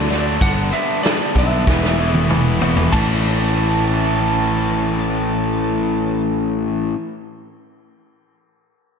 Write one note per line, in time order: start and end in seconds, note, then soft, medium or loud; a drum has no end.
0.00 0.37 D2 medium
0.00 0.23 D5 medium
0.09 0.39 D3 medium
0.09 0.39 F#3 medium
0.09 0.39 A3 medium
0.09 0.40 D4 medium
0.09 snare soft
0.09 closed hi-hat medium
0.40 0.71 G1 medium
0.40 0.70 G2 medium
0.40 0.71 D3 medium
0.40 0.72 G3 medium
0.40 0.72 B3 medium
0.40 0.73 D4 medium
0.40 0.50 F#5 medium
0.40 kick medium
0.40 closed hi-hat medium
0.71 1.01 G2 medium
0.71 1.02 D3 medium
0.71 1.03 G3 medium
0.71 1.03 B3 medium
0.71 1.04 D4 medium
0.71 1.03 E5 medium
0.71 closed hi-hat medium
1.02 1.33 G2 medium
1.02 1.33 D3 medium
1.02 1.35 G3 medium
1.02 1.35 B3 medium
1.02 1.36 D4 medium
1.02 1.36 D5 medium
1.02 snare medium
1.02 closed hi-hat medium
1.34 1.65 B1 medium
1.34 1.64 G2 medium
1.34 1.65 D3 medium
1.34 1.65 G3 medium
1.34 1.65 B3 medium
1.34 1.66 D4 medium
1.34 kick medium
1.34 closed hi-hat soft
1.38 2.27 E5 medium
1.66 2.89 E1 medium
1.66 1.96 E2 medium
1.66 1.98 B2 medium
1.66 1.97 E3 medium
1.66 1.98 A3 medium
1.66 1.99 B3 medium
1.66 1.99 E4 medium
1.66 kick medium
1.66 snare soft
1.84 snare soft
1.98 2.27 E2 medium
1.98 2.28 B2 medium
1.98 2.27 E3 medium
1.98 2.28 A3 medium
1.98 2.28 B3 medium
1.98 2.29 E4 medium
2.14 high tom soft
2.28 2.59 E2 medium
2.28 2.59 B2 medium
2.28 2.59 E3 medium
2.28 2.60 A3 medium
2.28 2.60 B3 medium
2.28 2.61 E4 medium
2.28 mid tom medium
2.60 2.90 E2 medium
2.60 2.91 B2 medium
2.60 2.90 E3 medium
2.60 2.91 A3 medium
2.60 2.91 B3 medium
2.60 2.91 E4 medium
2.60 floor tom medium
2.77 floor tom medium
2.91 6.91 A1 medium
2.91 6.94 A2 medium
2.91 6.95 E3 medium
2.91 6.95 A3 medium
2.91 6.96 C#4 medium
2.91 6.21 A5 medium
2.91 kick medium
2.91 ride medium
2.95 6.96 E4 medium